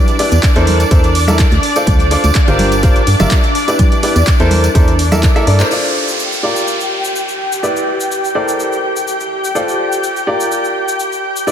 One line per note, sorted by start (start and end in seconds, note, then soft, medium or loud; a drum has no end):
0.00 5.72 D4 medium
0.00 0.16 E4 medium
0.00 0.16 G4 medium
0.00 0.16 B4 medium
0.00 0.16 D5 medium
0.00 5.72 D5 medium
0.07 closed hi-hat soft
0.07 tambourine soft
0.19 0.35 E4 medium
0.19 0.35 G4 medium
0.19 0.35 B4 medium
0.19 0.35 D5 medium
0.19 open hi-hat loud
0.32 0.39 E2 medium
0.32 closed hi-hat soft
0.32 tambourine medium
0.43 kick loud
0.43 clap loud
0.43 closed hi-hat medium
0.43 tambourine medium
0.56 0.84 E2 medium
0.56 0.81 E4 loud
0.56 0.81 A4 medium
0.56 0.81 A#4 medium
0.56 0.81 C5 loud
0.56 closed hi-hat soft
0.56 tambourine soft
0.67 open hi-hat loud
0.67 high conga medium
0.80 closed hi-hat soft
0.80 tambourine medium
0.91 1.44 E2 medium
0.91 1.07 E4 medium
0.91 1.07 A4 medium
0.91 1.07 A#4 medium
0.91 1.07 C5 loud
0.91 kick loud
0.91 closed hi-hat medium
0.91 tambourine medium
1.04 closed hi-hat soft
1.04 tambourine soft
1.15 open hi-hat loud
1.28 1.43 E4 medium
1.28 1.43 A4 medium
1.28 1.43 A#4 medium
1.28 1.43 E5 medium
1.28 closed hi-hat soft
1.28 tambourine medium
1.28 high conga medium
1.39 kick loud
1.39 clap loud
1.39 closed hi-hat medium
1.39 tambourine medium
1.51 1.59 D2 loud
1.51 closed hi-hat soft
1.51 tambourine soft
1.63 open hi-hat loud
1.76 2.08 F4 medium
1.76 2.08 A4 medium
1.76 2.08 C5 medium
1.76 2.08 D5 medium
1.76 closed hi-hat soft
1.76 tambourine medium
1.87 2.16 D2 loud
1.87 kick loud
1.87 closed hi-hat medium
1.87 tambourine medium
1.87 high conga medium
1.99 closed hi-hat soft
1.99 tambourine soft
2.11 2.27 F4 medium
2.11 2.27 A4 medium
2.11 2.27 C5 medium
2.11 2.27 D5 medium
2.11 open hi-hat loud
2.24 2.31 D2 medium
2.24 closed hi-hat soft
2.24 tambourine medium
2.35 kick loud
2.35 clap loud
2.35 closed hi-hat loud
2.35 tambourine medium
2.48 3.00 G1 medium
2.48 2.73 F4 loud
2.48 2.73 G4 medium
2.48 2.73 A#4 medium
2.48 2.73 C5 loud
2.48 closed hi-hat soft
2.48 tambourine soft
2.59 open hi-hat loud
2.59 high conga medium
2.72 closed hi-hat soft
2.72 tambourine medium
2.83 2.99 F4 medium
2.83 2.99 G4 medium
2.83 2.99 A#4 medium
2.83 2.99 C5 loud
2.83 kick loud
2.83 closed hi-hat medium
2.83 tambourine medium
2.96 closed hi-hat soft
2.96 tambourine soft
3.07 3.15 G2 medium
3.07 open hi-hat loud
3.20 3.27 G1 medium
3.20 3.35 F4 medium
3.20 3.35 G4 medium
3.20 3.35 A#4 medium
3.20 3.35 E5 medium
3.20 closed hi-hat soft
3.20 tambourine medium
3.20 high conga loud
3.31 kick loud
3.31 clap loud
3.31 closed hi-hat medium
3.31 tambourine medium
3.43 closed hi-hat soft
3.43 tambourine soft
3.55 open hi-hat loud
3.68 4.00 E4 medium
3.68 4.00 G4 medium
3.68 4.00 B4 medium
3.68 4.00 D5 medium
3.68 closed hi-hat soft
3.68 tambourine medium
3.79 kick loud
3.79 closed hi-hat loud
3.79 tambourine medium
3.79 high conga medium
3.92 closed hi-hat soft
3.92 tambourine soft
4.03 4.19 E4 medium
4.03 4.19 G4 medium
4.03 4.19 B4 medium
4.03 4.19 D5 medium
4.03 open hi-hat loud
4.16 4.23 E2 medium
4.16 closed hi-hat soft
4.16 tambourine medium
4.26 kick loud
4.26 clap loud
4.26 closed hi-hat medium
4.26 tambourine medium
4.40 4.68 E2 medium
4.40 4.65 E4 loud
4.40 4.65 A4 medium
4.40 4.65 A#4 medium
4.40 4.65 C5 loud
4.40 closed hi-hat soft
4.40 tambourine soft
4.51 open hi-hat loud
4.51 high conga medium
4.64 closed hi-hat soft
4.64 tambourine medium
4.75 5.28 E2 medium
4.75 4.91 E4 medium
4.75 4.91 A4 medium
4.75 4.91 A#4 medium
4.75 4.91 C5 loud
4.75 kick loud
4.75 closed hi-hat medium
4.75 tambourine medium
4.88 closed hi-hat soft
4.88 tambourine soft
4.99 open hi-hat loud
5.11 5.27 E4 medium
5.11 5.27 A4 medium
5.11 5.27 A#4 medium
5.11 5.27 E5 medium
5.11 closed hi-hat soft
5.11 tambourine medium
5.11 high conga medium
5.23 kick loud
5.23 clap loud
5.23 closed hi-hat loud
5.23 tambourine medium
5.36 5.45 E4 loud
5.36 5.45 A4 medium
5.36 5.45 A#4 medium
5.36 5.45 E5 loud
5.36 closed hi-hat soft
5.36 tambourine soft
5.47 5.63 G2 loud
5.47 5.58 E4 medium
5.47 5.58 A4 medium
5.47 5.58 A#4 medium
5.47 5.58 D5 medium
5.47 open hi-hat loud
5.59 5.70 E4 medium
5.59 5.70 A4 medium
5.59 5.70 A#4 medium
5.59 5.70 C5 medium
5.59 clap medium
5.59 closed hi-hat soft
5.59 tambourine medium
5.71 6.40 F4 medium
5.71 11.52 G4 medium
5.71 6.40 A4 medium
5.71 6.40 C5 medium
5.71 6.40 D5 medium
5.71 11.52 G5 medium
5.71 crash medium
5.71 downlifter medium
5.71 shaker medium
5.84 shaker soft
6.08 shaker medium
6.20 shaker medium
6.32 shaker soft
6.43 7.60 F4 medium
6.43 7.60 G4 medium
6.43 7.60 A#4 medium
6.43 7.60 D5 medium
6.56 shaker medium
6.68 shaker soft
6.80 shaker soft
7.04 shaker medium
7.16 shaker medium
7.29 shaker soft
7.53 shaker medium
7.63 8.32 E4 medium
7.63 8.32 G4 medium
7.63 8.32 B4 medium
7.63 8.32 D5 medium
7.63 shaker soft
7.77 shaker soft
8.01 shaker medium
8.12 shaker medium
8.25 shaker soft
8.35 9.52 E4 medium
8.35 9.52 A4 medium
8.35 9.52 A#4 medium
8.35 9.52 C5 medium
8.35 9.52 D5 medium
8.48 shaker medium
8.60 shaker soft
8.73 shaker soft
8.96 shaker medium
9.08 shaker medium
9.20 shaker soft
9.44 shaker medium
9.55 10.24 F4 medium
9.55 10.24 A4 medium
9.55 10.24 C5 medium
9.55 10.24 D5 medium
9.55 shaker medium
9.68 shaker soft
9.92 shaker medium
10.04 shaker medium
10.17 shaker soft
10.27 11.44 F4 medium
10.27 11.44 G4 medium
10.27 11.44 A#4 medium
10.27 11.44 D5 medium
10.40 shaker medium
10.52 shaker soft
10.64 shaker soft
10.88 shaker medium
11.00 shaker soft
11.12 shaker soft
11.36 shaker medium
11.47 11.52 E4 medium
11.47 11.52 G4 medium
11.47 11.52 B4 medium
11.47 11.52 D5 medium
11.47 shaker soft